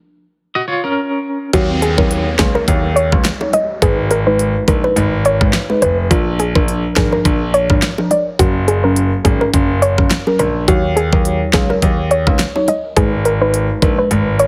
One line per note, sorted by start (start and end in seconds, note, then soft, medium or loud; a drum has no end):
0.55 0.68 F#4 medium
0.55 0.67 D#5 medium
0.68 0.83 F4 medium
0.68 0.83 C#5 medium
0.84 1.50 C#4 medium
0.84 1.50 A#4 medium
1.53 1.94 D#2 loud
1.53 1.70 F#3 loud
1.53 1.70 D#4 medium
1.53 1.67 F#4 medium
1.53 1.70 C#5 loud
1.53 kick loud
1.53 closed hi-hat medium
1.53 downlifter medium
1.82 1.96 G#4 medium
1.82 closed hi-hat medium
1.82 high bongo medium
1.98 2.24 D#2 medium
1.98 2.36 F#3 medium
1.98 2.36 D#4 medium
1.98 2.09 A#4 medium
1.98 2.36 C#5 medium
1.98 kick loud
2.11 closed hi-hat medium
2.39 2.54 C#2 medium
2.39 2.66 F#3 medium
2.39 2.66 D#4 medium
2.39 2.53 G#4 medium
2.39 2.66 C#5 medium
2.39 kick medium
2.39 snare loud
2.39 closed hi-hat medium
2.39 high bongo medium
2.39 low bongo medium
2.55 2.66 A#4 medium
2.55 high bongo medium
2.68 3.08 D#2 loud
2.68 2.84 F#3 medium
2.68 2.85 D#4 medium
2.68 2.85 C#5 loud
2.68 kick medium
2.68 closed hi-hat medium
2.96 3.10 C#5 medium
2.96 closed hi-hat soft
3.12 3.24 C#2 medium
3.12 3.26 F#3 medium
3.12 3.26 D#4 medium
3.12 3.26 C#5 medium
3.12 kick medium
3.12 cross-stick medium
3.25 snare loud
3.25 closed hi-hat medium
3.41 3.54 F#3 medium
3.41 3.54 D#4 medium
3.41 3.55 C#5 medium
3.41 high bongo medium
3.53 3.67 D#5 medium
3.53 closed hi-hat medium
3.53 low bongo medium
3.82 4.52 G#1 loud
3.82 3.99 G#3 medium
3.82 3.99 D#4 medium
3.82 3.96 G#4 loud
3.82 3.99 B4 loud
3.82 kick medium
3.82 closed hi-hat medium
4.11 4.25 A#4 medium
4.11 closed hi-hat medium
4.11 high bongo medium
4.27 4.65 G#3 medium
4.27 4.65 D#4 medium
4.27 4.38 B4 medium
4.27 4.65 B4 medium
4.39 closed hi-hat medium
4.68 4.82 A#1 medium
4.68 4.94 G#3 medium
4.68 4.94 D#4 medium
4.68 4.82 A#4 medium
4.68 4.95 B4 medium
4.68 kick medium
4.68 closed hi-hat medium
4.68 high bongo medium
4.68 low bongo medium
4.84 4.95 B4 medium
4.84 high bongo medium
4.96 5.37 G#1 loud
4.96 5.13 G#3 medium
4.96 5.13 D#4 medium
4.96 5.13 B4 loud
4.96 closed hi-hat medium
5.25 5.39 C#5 medium
5.25 closed hi-hat soft
5.41 5.52 G#1 medium
5.41 5.54 G#3 medium
5.41 5.55 D#4 medium
5.41 5.55 B4 medium
5.41 kick medium
5.41 cross-stick loud
5.53 snare loud
5.53 closed hi-hat medium
5.70 5.83 G#3 medium
5.70 5.83 D#4 medium
5.70 5.83 B4 medium
5.70 high bongo medium
5.82 6.08 F1 medium
5.82 5.96 B4 medium
5.82 closed hi-hat medium
5.82 low bongo medium
6.10 6.51 A#1 loud
6.10 6.27 F3 loud
6.10 6.27 D4 medium
6.10 6.25 F4 medium
6.10 6.28 A#4 loud
6.10 kick loud
6.10 closed hi-hat medium
6.39 6.53 G#4 medium
6.39 closed hi-hat medium
6.39 high bongo medium
6.55 6.81 A#1 loud
6.55 6.93 F3 medium
6.55 6.94 D4 medium
6.55 6.66 A#4 medium
6.55 6.94 A#4 medium
6.55 kick medium
6.68 closed hi-hat medium
6.96 7.11 G#1 medium
6.96 7.23 F3 medium
6.96 7.23 D4 medium
6.96 7.10 G#4 medium
6.96 7.23 A#4 medium
6.96 kick medium
6.96 snare loud
6.96 closed hi-hat medium
6.96 high bongo medium
6.96 low bongo medium
7.12 7.23 A#4 medium
7.12 high bongo medium
7.25 7.66 A#1 loud
7.25 7.42 F3 medium
7.25 7.42 D4 medium
7.25 7.42 A#4 loud
7.25 kick medium
7.25 closed hi-hat medium
7.54 7.68 C#5 medium
7.54 closed hi-hat soft
7.70 7.81 G#1 medium
7.70 7.83 F3 medium
7.70 7.83 D4 medium
7.70 7.83 A#4 medium
7.70 kick medium
7.70 cross-stick loud
7.82 snare loud
7.82 closed hi-hat medium
7.98 8.12 F3 medium
7.98 8.12 D4 medium
7.98 8.12 A#4 medium
7.98 high bongo medium
8.11 8.25 D5 medium
8.11 closed hi-hat medium
8.11 low bongo medium
8.39 9.09 F#1 loud
8.39 8.56 F#3 loud
8.39 8.56 C#4 medium
8.39 8.53 F#4 loud
8.39 8.56 A#4 loud
8.39 kick loud
8.39 closed hi-hat medium
8.68 8.82 G#4 medium
8.68 closed hi-hat medium
8.68 high bongo medium
8.84 9.22 F#3 medium
8.84 9.22 C#4 medium
8.84 8.95 A#4 medium
8.84 9.22 A#4 medium
8.96 closed hi-hat medium
9.25 9.40 G#1 loud
9.25 9.51 F#3 medium
9.25 9.52 C#4 medium
9.25 9.39 G#4 medium
9.25 9.52 A#4 medium
9.25 kick medium
9.25 closed hi-hat medium
9.25 high bongo medium
9.25 low bongo medium
9.41 9.52 A#4 medium
9.41 high bongo medium
9.53 9.94 F#1 loud
9.53 9.70 F#3 medium
9.53 9.70 C#4 medium
9.53 9.70 A#4 loud
9.53 kick medium
9.53 closed hi-hat medium
9.82 9.96 C#5 medium
9.82 closed hi-hat soft
9.98 10.10 F#1 medium
9.98 10.11 F#3 medium
9.98 10.12 C#4 medium
9.98 10.12 A#4 medium
9.98 kick medium
9.98 cross-stick medium
10.11 snare loud
10.11 closed hi-hat medium
10.27 10.40 F#3 medium
10.27 10.40 C#4 medium
10.27 10.40 A#4 medium
10.27 high bongo medium
10.39 10.65 A#1 medium
10.39 10.53 A#4 medium
10.39 closed hi-hat medium
10.39 low bongo medium
10.68 11.09 D#2 loud
10.68 10.84 F#3 loud
10.68 10.84 D#4 medium
10.68 10.82 F#4 medium
10.68 10.85 C#5 loud
10.68 kick loud
10.68 closed hi-hat medium
10.96 11.10 G#4 medium
10.96 closed hi-hat medium
10.96 high bongo medium
11.12 11.39 D#2 medium
11.12 11.50 F#3 medium
11.12 11.51 D#4 medium
11.12 11.24 A#4 medium
11.12 11.51 C#5 medium
11.12 kick loud
11.25 closed hi-hat medium
11.53 11.68 C#2 medium
11.53 11.80 F#3 medium
11.53 11.80 D#4 medium
11.53 11.68 G#4 medium
11.53 11.80 C#5 medium
11.53 kick medium
11.53 snare loud
11.53 closed hi-hat medium
11.53 high bongo medium
11.53 low bongo medium
11.70 11.81 A#4 medium
11.70 high bongo medium
11.82 12.23 D#2 loud
11.82 11.99 F#3 medium
11.82 11.99 D#4 medium
11.82 11.99 C#5 loud
11.82 kick medium
11.82 closed hi-hat medium
12.11 12.25 C#5 medium
12.11 closed hi-hat soft
12.27 12.38 C#2 medium
12.27 12.40 F#3 medium
12.27 12.40 D#4 medium
12.27 12.40 C#5 medium
12.27 kick medium
12.27 cross-stick medium
12.39 snare loud
12.39 closed hi-hat medium
12.55 12.69 F#3 medium
12.55 12.69 D#4 medium
12.55 12.69 C#5 medium
12.55 high bongo medium
12.68 12.82 D#5 medium
12.68 closed hi-hat medium
12.68 low bongo medium
12.96 13.66 G#1 loud
12.96 13.13 G#3 loud
12.96 13.13 D#4 medium
12.96 13.10 G#4 loud
12.96 13.13 B4 loud
12.96 kick medium
12.96 closed hi-hat medium
13.25 13.39 A#4 medium
13.25 closed hi-hat medium
13.41 13.79 G#3 medium
13.41 13.79 D#4 medium
13.41 13.79 B4 medium
13.41 13.52 B4 medium
13.54 closed hi-hat medium
13.82 13.97 A#1 medium
13.82 14.09 G#3 medium
13.82 14.09 D#4 medium
13.82 13.96 A#4 medium
13.82 14.09 B4 medium
13.82 kick medium
13.82 closed hi-hat medium
13.98 14.09 B4 medium
14.11 14.47 G#1 loud
14.11 14.27 G#3 medium
14.11 14.28 D#4 medium
14.11 14.28 B4 loud
14.11 closed hi-hat medium
14.39 14.47 C#5 medium
14.39 closed hi-hat soft